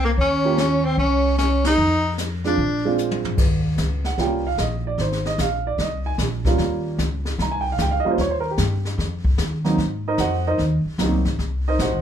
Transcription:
0.00 0.14 C2 medium
0.04 0.10 A#3 medium
0.04 0.11 A#3 medium
0.18 0.94 D#2 medium
0.18 0.55 C#4 medium
0.18 0.57 C#4 medium
0.18 brush sweep soft
0.18 kick soft
0.45 0.57 A#3 medium
0.45 0.57 C#4 medium
0.45 0.57 F4 medium
0.45 0.57 G4 medium
0.57 0.86 C#4 medium
0.57 0.87 C#4 medium
0.57 snare medium
0.57 hi-hat pedal medium
0.84 0.97 C4 medium
0.84 0.98 C4 medium
0.98 1.74 C2 medium
0.98 1.35 C#4 medium
0.98 1.36 C#4 medium
0.98 brush sweep soft
0.98 kick soft
1.38 1.63 C#4 medium
1.38 snare medium
1.38 hi-hat pedal medium
1.64 2.10 D#4 medium
1.64 2.11 D#4 loud
1.64 snare medium
1.64 ride medium
1.78 2.54 F2 medium
1.78 brush sweep soft
2.18 snare medium
2.18 hi-hat pedal medium
2.44 2.57 G#3 soft
2.44 2.57 C4 soft
2.44 2.95 D4 medium
2.44 2.58 D4 soft
2.44 2.96 D4 medium
2.44 2.58 F4 medium
2.44 snare soft
2.58 3.34 A#1 medium
2.58 brush sweep soft
2.58 kick soft
2.85 3.36 G#3 medium
2.85 3.36 C4 medium
2.85 3.36 D4 medium
2.85 3.36 F4 medium
2.98 hi-hat pedal medium
3.11 high tom soft
3.25 floor tom medium
3.38 3.77 D#2 medium
3.38 brush sweep soft
3.38 kick medium
3.38 snare soft
3.38 crash medium
3.78 4.17 C#2 medium
3.78 kick soft
3.78 snare medium
3.78 hi-hat pedal medium
4.04 4.18 F#5 medium
4.04 snare soft
4.18 4.57 C2 medium
4.18 4.42 G3 medium
4.18 4.42 A#3 soft
4.18 4.42 C#4 soft
4.18 4.43 F4 medium
4.18 4.45 G5 medium
4.18 brush sweep soft
4.18 kick soft
4.18 snare soft
4.47 4.59 F5 medium
4.58 4.97 A#1 medium
4.58 4.85 D#5 medium
4.58 kick soft
4.58 snare medium
4.58 hi-hat pedal soft
4.87 4.99 D5 medium
4.98 5.37 G#1 medium
4.98 5.25 C5 medium
4.98 brush sweep soft
4.98 kick soft
4.98 snare soft
5.12 snare soft
5.25 5.39 D#5 medium
5.25 snare soft
5.38 5.77 A#1 medium
5.38 5.65 F5 medium
5.38 kick soft
5.38 snare medium
5.38 hi-hat pedal medium
5.67 5.79 D5 medium
5.78 6.17 C2 medium
5.78 6.06 D#5 medium
5.78 brush sweep soft
5.78 kick soft
5.78 snare soft
6.06 6.14 G#5 medium
6.18 6.57 A#1 medium
6.18 kick soft
6.18 snare medium
6.18 hi-hat pedal medium
6.45 6.96 G3 medium
6.45 6.97 A#3 medium
6.45 6.97 C#4 medium
6.45 6.97 F4 medium
6.45 kick soft
6.45 snare soft
6.58 6.97 D#2 medium
6.58 brush sweep soft
6.58 kick soft
6.58 snare soft
6.98 7.37 C#2 medium
6.98 kick soft
6.98 snare medium
6.98 hi-hat pedal medium
7.25 snare soft
7.38 7.77 C2 medium
7.38 7.53 A#5 medium
7.38 brush sweep soft
7.38 kick soft
7.38 snare soft
7.51 7.64 G#5 medium
7.61 7.69 G5 medium
7.72 7.78 F5 medium
7.78 8.03 C#2 medium
7.78 7.93 G5 medium
7.78 kick soft
7.78 snare medium
7.78 hi-hat pedal medium
7.91 8.04 F5 medium
8.00 8.09 D#5 medium
8.04 8.17 G3 medium
8.04 8.17 A#3 medium
8.04 8.18 C#4 medium
8.04 8.18 F4 medium
8.04 muted upright bass stroke soft
8.11 8.18 C5 medium
8.18 8.57 D#2 medium
8.18 8.33 C#5 medium
8.18 brush sweep soft
8.18 kick soft
8.18 snare soft
8.31 8.44 C5 medium
8.40 8.49 A#4 medium
8.51 9.07 G4 medium
8.58 8.97 G2 medium
8.58 kick soft
8.58 snare medium
8.58 hi-hat pedal medium
8.85 snare soft
8.98 9.37 F2 medium
8.98 brush sweep soft
8.98 kick soft
8.98 snare soft
9.25 kick medium
9.38 9.77 D#2 medium
9.38 kick soft
9.38 snare medium
9.38 hi-hat pedal medium
9.64 9.77 F#3 medium
9.64 9.77 A#3 medium
9.64 9.77 C4 medium
9.64 9.78 D#4 medium
9.64 snare soft
9.78 10.17 G#2 medium
9.78 brush sweep soft
9.78 kick soft
9.78 snare soft
10.08 10.19 D#4 medium
10.08 10.20 A#4 medium
10.08 10.19 C5 medium
10.08 10.19 D#5 medium
10.18 10.57 F2 medium
10.18 10.45 F#4 medium
10.18 10.45 C5 medium
10.18 10.46 D#5 medium
10.18 10.45 F#5 medium
10.18 kick soft
10.18 snare medium
10.18 hi-hat pedal medium
10.47 10.59 D#4 medium
10.47 10.60 A#4 medium
10.47 10.60 C5 medium
10.47 10.59 D#5 medium
10.58 10.83 D#2 medium
10.58 brush sweep soft
10.58 kick soft
10.58 snare soft
10.85 muted upright bass stroke soft
10.98 11.11 C#2 medium
10.98 11.23 F#3 medium
10.98 11.23 A#3 soft
10.98 11.24 C4 soft
10.98 11.24 D#4 medium
10.98 kick soft
10.98 snare medium
10.98 hi-hat pedal medium
11.11 11.24 C2 soft
11.25 11.37 G#1 medium
11.25 snare soft
11.38 11.77 C2 medium
11.38 brush sweep soft
11.38 kick soft
11.38 snare soft
11.68 11.80 D#4 medium
11.68 11.80 A#4 medium
11.68 11.80 C5 medium
11.68 11.80 D#5 medium
11.79 11.92 A#1 medium
11.79 12.02 F#4 medium
11.79 12.02 C5 medium
11.79 12.02 D#5 medium
11.79 12.02 F#5 medium
11.79 kick soft
11.79 snare medium
11.79 hi-hat pedal medium
11.92 12.02 G#1 medium

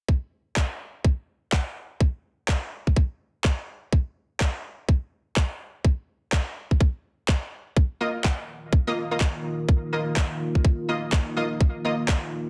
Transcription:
0.09 kick loud
0.56 kick loud
0.56 clap loud
1.05 kick loud
1.52 kick loud
1.52 clap loud
2.00 kick loud
2.48 kick loud
2.48 clap loud
2.87 kick medium
2.96 kick loud
3.44 kick loud
3.44 clap loud
3.92 kick loud
4.41 kick loud
4.41 clap loud
4.89 kick loud
5.37 kick loud
5.37 clap loud
5.85 kick loud
6.33 kick loud
6.33 clap loud
6.71 kick medium
6.81 kick loud
7.29 kick loud
7.29 clap loud
7.76 12.50 D#3 medium
7.76 12.50 A#3 medium
7.76 12.50 F4 medium
7.76 kick loud
8.00 8.09 A#3 medium
8.00 8.09 F4 medium
8.00 8.09 D#5 medium
8.25 kick loud
8.25 clap loud
8.73 kick loud
8.87 8.93 A#3 loud
8.87 8.93 F4 medium
8.87 8.93 D#5 loud
9.11 9.17 A#3 medium
9.11 9.17 F4 medium
9.11 9.17 D#5 medium
9.21 kick loud
9.21 clap loud
9.69 kick loud
9.93 10.01 A#3 medium
9.93 10.01 F4 medium
9.93 10.01 D#5 medium
10.17 kick loud
10.17 clap loud
10.55 kick medium
10.65 kick loud
10.89 11.02 A#3 medium
10.89 11.02 F4 medium
10.89 11.02 D#5 medium
11.13 kick loud
11.13 clap loud
11.36 11.45 A#3 medium
11.36 11.45 F4 medium
11.36 11.45 D#5 medium
11.61 kick loud
11.85 11.93 A#3 medium
11.85 11.93 F4 medium
11.85 11.93 D#5 medium
12.09 kick loud
12.09 clap loud

